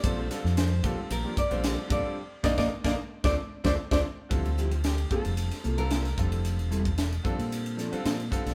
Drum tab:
RD |x-x-x-x-x-xxx-x-|----------------|xx-xxx-xxx-xxx-x|xx-xxx-xxx-xxx-x|
HH |p-p-p-p-p-p-p-p-|----------------|p-p-p-p-p-p-p-p-|p-p-p-p-p-p-p-p-|
SD |--ooo-------o---|--oo-o--o--o-o--|----o----o--oo--|----o-----o-o--o|
BD |o-----o---o---o-|--oo-o--o--o-o--|o-----o-------o-|---o--o-------o-|